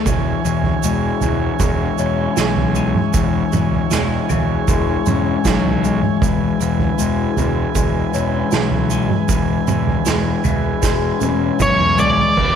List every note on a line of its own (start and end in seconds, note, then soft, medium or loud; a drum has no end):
0.00 1.99 E4 medium
0.00 12.33 E4 medium
0.05 0.33 E1 medium
0.05 0.44 E3 medium
0.05 12.34 G#4 medium
0.05 6.18 C#5 medium
0.05 12.34 G#5 medium
0.05 kick loud
0.05 floor tom medium
0.05 shaker medium
0.45 0.72 E1 medium
0.45 1.22 E3 medium
0.45 shaker medium
0.63 floor tom medium
0.83 1.11 E1 medium
0.83 1.59 G#3 medium
0.83 shaker loud
1.21 1.49 E1 medium
1.21 2.37 E3 medium
1.21 floor tom medium
1.21 shaker medium
1.59 1.87 E1 medium
1.59 2.75 G#3 medium
1.59 kick loud
1.59 floor tom medium
1.59 shaker medium
1.98 2.26 E1 medium
1.98 5.06 C#4 medium
1.98 shaker medium
2.37 2.91 B1 medium
2.37 3.13 E3 medium
2.37 snare medium
2.37 shaker medium
2.56 floor tom medium
2.75 3.91 G#3 medium
2.75 shaker medium
2.95 mid tom medium
3.14 3.41 E1 medium
3.14 3.53 E3 medium
3.14 kick loud
3.14 floor tom medium
3.14 shaker loud
3.52 3.79 E1 medium
3.52 4.29 E3 medium
3.52 mid tom medium
3.52 shaker medium
3.72 floor tom medium
3.91 4.18 E1 medium
3.91 4.68 G#3 medium
3.91 snare medium
3.91 shaker loud
4.29 4.57 E1 medium
4.29 5.44 E3 medium
4.29 floor tom medium
4.29 shaker medium
4.68 4.95 E1 medium
4.68 5.82 G#3 medium
4.68 kick loud
4.68 floor tom medium
4.68 shaker medium
5.06 5.34 E1 medium
5.06 8.13 C#4 medium
5.06 mid tom medium
5.06 shaker medium
5.45 5.99 B1 medium
5.45 6.22 E3 medium
5.45 kick medium
5.45 snare medium
5.45 shaker medium
5.64 floor tom medium
5.83 6.98 G#3 medium
5.83 shaker medium
6.02 mid tom medium
6.22 6.49 E1 medium
6.22 6.60 E3 medium
6.22 12.34 B4 medium
6.22 kick loud
6.22 floor tom medium
6.22 shaker medium
6.60 6.87 E1 medium
6.60 7.37 E3 medium
6.60 shaker medium
6.79 floor tom medium
6.98 7.26 E1 medium
6.98 7.75 G#3 medium
6.98 shaker loud
7.37 7.65 E1 medium
7.37 8.52 E3 medium
7.37 floor tom medium
7.37 shaker medium
7.75 8.02 E1 medium
7.75 8.90 G#3 medium
7.75 kick loud
7.75 floor tom medium
7.75 shaker loud
8.14 8.42 E1 medium
8.14 10.06 C#4 medium
8.14 shaker medium
8.51 9.07 B1 medium
8.51 9.29 E3 medium
8.51 snare medium
8.51 shaker medium
8.71 floor tom medium
8.90 10.05 G#3 medium
8.90 shaker medium
9.10 mid tom medium
9.28 9.56 E1 medium
9.28 9.67 E3 medium
9.28 kick loud
9.28 floor tom medium
9.28 shaker loud
9.67 9.95 E1 medium
9.67 10.43 E3 medium
9.67 mid tom medium
9.67 shaker medium
9.87 floor tom medium
10.06 10.33 E1 medium
10.06 10.81 G#3 medium
10.06 snare medium
10.06 shaker loud
10.44 10.72 E1 medium
10.44 11.58 E3 medium
10.44 floor tom medium
10.44 shaker medium
10.82 11.10 E1 medium
10.82 11.95 G#3 medium
10.82 kick loud
10.82 snare medium
10.82 shaker loud
11.20 11.49 E1 medium
11.20 12.37 C#4 medium
11.20 high tom medium
11.20 shaker medium
11.59 12.14 B1 medium
11.59 12.35 E3 medium
11.59 12.00 C#5 medium
11.59 kick medium
11.59 mid tom medium
11.59 shaker loud
11.79 mid tom medium
11.96 12.36 G#3 medium
11.96 floor tom medium
11.96 shaker medium
12.00 12.55 D5 loud
12.17 floor tom medium
12.36 12.55 E1 medium
12.36 12.55 E3 medium
12.36 12.55 B3 medium
12.36 12.55 D4 medium
12.36 12.55 E4 medium
12.36 12.55 B4 medium
12.36 kick loud
12.36 floor tom medium
12.36 crash medium